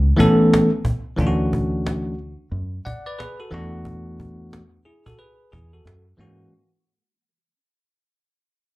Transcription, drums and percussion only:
0.20 cajon bass medium
0.54 cajon slap loud
0.85 cajon bass medium
1.19 cajon bass loud
1.53 cajon bass loud
1.86 cajon slap loud
2.19 cajon slap soft
2.52 cajon slap soft
2.87 cajon bass medium
3.20 cajon slap loud
3.85 cajon bass loud
4.20 cajon bass loud
4.53 cajon slap loud
4.85 cajon slap soft
5.06 cajon bass loud
5.19 cajon slap soft
5.53 cajon bass loud
5.87 cajon slap loud

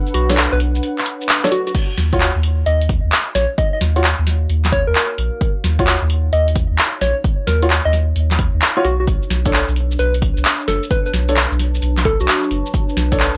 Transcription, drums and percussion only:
0.07 shaker soft
0.14 closed hi-hat loud
0.30 snare medium
0.30 closed hi-hat medium
0.30 shaker medium
0.37 clap loud
0.37 closed hi-hat medium
0.37 shaker medium
0.53 shaker soft
0.60 closed hi-hat loud
0.75 shaker medium
0.83 closed hi-hat medium
0.83 shaker medium
0.98 clap medium
0.98 closed hi-hat soft
0.98 shaker soft
1.06 closed hi-hat loud
1.21 shaker medium
1.29 clap loud
1.29 closed hi-hat medium
1.29 shaker medium
1.44 snare medium
1.44 shaker soft
1.52 closed hi-hat loud
1.67 closed hi-hat soft
1.67 shaker medium
1.75 kick loud
1.75 closed hi-hat medium
1.75 crash medium
1.98 snare medium
1.98 closed hi-hat loud
2.13 kick loud
2.13 closed hi-hat medium
2.20 clap loud
2.20 closed hi-hat medium
2.43 closed hi-hat loud
2.66 closed hi-hat medium
2.81 closed hi-hat medium
2.89 kick loud
2.89 closed hi-hat loud
3.12 clap loud
3.12 closed hi-hat medium
3.35 snare medium
3.35 closed hi-hat loud
3.58 kick loud
3.58 closed hi-hat medium
3.81 snare medium
3.81 closed hi-hat loud
3.96 closed hi-hat medium
4.04 clap loud
4.04 closed hi-hat medium
4.27 snare soft
4.27 closed hi-hat loud
4.50 closed hi-hat medium
4.65 clap medium
4.65 snare medium
4.65 closed hi-hat soft
4.72 kick loud
4.72 closed hi-hat loud
4.95 clap loud
4.95 closed hi-hat medium
5.18 closed hi-hat loud
5.41 kick loud
5.41 closed hi-hat medium
5.64 snare medium
5.64 closed hi-hat loud
5.79 kick loud
5.79 closed hi-hat medium
5.87 clap loud
5.87 closed hi-hat medium
6.10 closed hi-hat loud
6.33 closed hi-hat medium
6.48 closed hi-hat medium
6.56 kick loud
6.56 closed hi-hat loud
6.78 clap loud
6.78 closed hi-hat medium
7.01 snare medium
7.01 closed hi-hat medium
7.24 kick loud
7.24 closed hi-hat medium
7.47 snare medium
7.47 closed hi-hat loud
7.62 closed hi-hat medium
7.70 clap loud
7.70 closed hi-hat medium
7.93 snare soft
7.93 closed hi-hat loud
8.16 closed hi-hat medium
8.31 clap medium
8.31 snare medium
8.31 closed hi-hat soft
8.39 kick loud
8.39 closed hi-hat loud
8.62 clap loud
8.62 closed hi-hat medium
8.85 closed hi-hat loud
9.07 kick loud
9.07 closed hi-hat medium
9.07 shaker medium
9.23 shaker soft
9.30 snare medium
9.30 closed hi-hat loud
9.46 kick loud
9.46 closed hi-hat medium
9.46 shaker medium
9.53 clap loud
9.53 closed hi-hat medium
9.53 shaker medium
9.69 shaker soft
9.76 closed hi-hat loud
9.91 shaker medium
9.99 closed hi-hat medium
9.99 shaker medium
10.14 closed hi-hat medium
10.14 shaker soft
10.22 kick loud
10.22 closed hi-hat loud
10.37 shaker medium
10.45 clap loud
10.45 closed hi-hat medium
10.45 shaker medium
10.60 shaker soft
10.68 snare soft
10.68 closed hi-hat loud
10.83 shaker medium
10.91 kick loud
10.91 closed hi-hat medium
10.91 shaker medium
11.06 shaker soft
11.14 snare medium
11.14 closed hi-hat loud
11.29 closed hi-hat medium
11.29 shaker medium
11.37 clap loud
11.37 closed hi-hat medium
11.37 shaker medium
11.52 shaker soft
11.59 snare soft
11.59 closed hi-hat loud
11.75 shaker medium
11.82 closed hi-hat medium
11.82 shaker medium
11.98 clap medium
11.98 snare medium
11.98 closed hi-hat soft
11.98 shaker soft
12.05 kick loud
12.05 closed hi-hat loud
12.20 shaker medium
12.28 clap loud
12.28 closed hi-hat medium
12.28 shaker medium
12.43 shaker soft
12.51 closed hi-hat loud
12.66 shaker medium
12.74 kick loud
12.74 closed hi-hat medium
12.74 shaker medium
12.89 shaker soft
12.97 snare medium
12.97 closed hi-hat loud
13.12 kick loud
13.12 closed hi-hat medium
13.12 shaker medium
13.20 clap loud
13.20 closed hi-hat medium
13.20 shaker medium

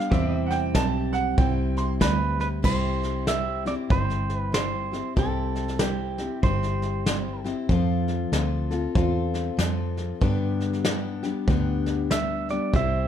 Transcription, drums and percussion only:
0.12 kick loud
0.12 snare soft
0.50 snare soft
0.75 kick medium
0.75 snare loud
0.75 hi-hat pedal medium
1.13 snare soft
1.38 kick loud
1.38 snare soft
1.77 snare soft
2.01 kick medium
2.01 snare loud
2.01 hi-hat pedal medium
2.40 snare soft
2.64 kick loud
2.64 snare soft
2.64 crash medium
3.03 snare soft
3.27 snare medium
3.27 hi-hat pedal medium
3.66 snare soft
3.90 kick loud
3.90 snare soft
4.10 snare soft
4.30 snare soft
4.54 snare loud
4.54 hi-hat pedal medium
4.93 snare soft
5.17 kick loud
5.17 snare soft
5.55 snare soft
5.68 snare soft
5.79 snare loud
5.79 hi-hat pedal medium
6.18 snare soft
6.43 kick loud
6.43 snare soft
6.63 snare soft
6.82 snare soft
7.06 snare loud
7.06 hi-hat pedal medium
7.45 snare soft
7.69 kick loud
7.69 snare soft
8.08 snare soft
8.33 snare medium
8.33 hi-hat pedal medium
8.71 snare soft
8.95 kick loud
8.95 snare soft
9.34 snare soft
9.59 snare medium
9.59 hi-hat pedal medium
9.97 snare soft
10.22 kick loud
10.22 snare soft
10.61 snare soft
10.73 snare soft
10.85 snare loud
10.85 hi-hat pedal medium
11.23 snare soft
11.48 kick loud
11.48 snare soft
11.86 snare soft
12.11 snare loud
12.11 hi-hat pedal medium
12.49 snare soft
12.73 kick loud
12.73 snare soft

